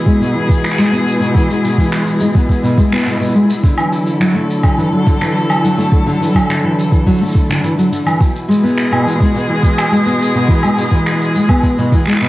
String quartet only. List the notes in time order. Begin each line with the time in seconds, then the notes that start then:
Already playing: B2 G#3 E4 G#4
3.65 D3
3.75 F#3
3.96 A4
8.21 B2
8.51 G#3
8.64 G#4